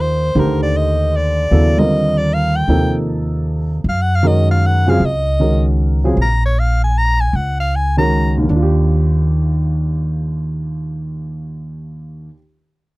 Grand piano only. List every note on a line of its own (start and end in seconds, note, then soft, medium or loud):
0.00 0.27 F3 medium
0.00 0.27 A#3 soft
0.00 0.27 D#4 medium
0.00 0.28 A#4 soft
0.00 0.28 D5 medium
0.35 1.44 D3 medium
0.35 1.44 D#3 medium
0.35 1.44 A3 medium
0.35 1.44 G4 medium
0.35 1.44 C5 medium
1.51 1.74 C#3 medium
1.51 1.75 F#3 medium
1.51 1.75 B3 soft
1.51 1.75 E4 soft
1.51 1.75 A4 medium
1.78 2.60 D3 soft
1.78 2.60 G3 soft
1.78 2.61 C4 soft
1.78 2.61 F4 soft
1.78 2.61 A#4 medium
2.68 3.77 C3 medium
2.68 3.77 F3 soft
2.68 3.77 A#3 soft
2.68 3.77 D#4 soft
2.68 3.77 A4 medium
4.23 4.82 D#3 medium
4.23 4.82 G#3 soft
4.23 4.82 C#4 soft
4.23 4.82 F#4 soft
4.23 4.83 A#4 medium
4.86 4.99 C#3 medium
4.86 4.99 F#3 medium
4.86 4.99 C4 medium
4.86 5.00 F4 medium
4.86 5.00 G#4 medium
5.40 5.99 D#3 soft
5.40 5.99 G#3 soft
5.40 5.99 C#4 soft
5.40 5.99 F#4 soft
5.40 5.99 A#4 medium
6.04 6.16 C#3 medium
6.04 6.16 F#3 soft
6.04 6.16 C4 medium
6.04 6.16 F4 soft
6.04 6.16 G#4 medium
7.97 8.42 D#3 medium
7.97 8.47 G#3 soft
7.97 8.47 C#4 medium
7.97 8.47 F#4 soft
7.97 8.47 A#4 medium
8.37 12.26 D#2 medium
8.43 12.29 D#3 soft
8.50 12.32 D4 medium
8.56 12.35 F4 medium
8.63 12.39 G4 medium